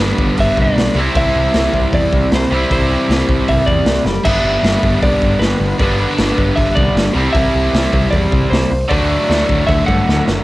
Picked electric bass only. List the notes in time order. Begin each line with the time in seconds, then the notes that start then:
0.00 G1
0.18 G1
0.38 G1
0.57 C2
0.75 B1
0.95 C2
1.15 C2
1.35 C2
1.54 C2
1.73 C2
1.93 E2
2.12 C2
2.31 C2
2.51 C2
2.70 C2
3.09 C2
3.28 C2
3.49 C2
3.67 E2
3.85 C2
4.05 F#1
4.26 G1
4.44 G1
4.63 G1
4.83 G1
5.03 C2
5.22 G1
5.40 G1
5.60 G1
5.80 G1
6.18 G1
6.37 G1
6.58 G1
6.76 C2
6.95 G1
7.15 C2
7.34 C2
7.55 C2
7.73 C2
7.93 C2
8.13 E2
8.32 C2
8.51 C2
8.71 C2
8.91 D2
9.30 D2
9.49 D2
9.68 D2
9.88 G2
10.08 D2
10.27 F#1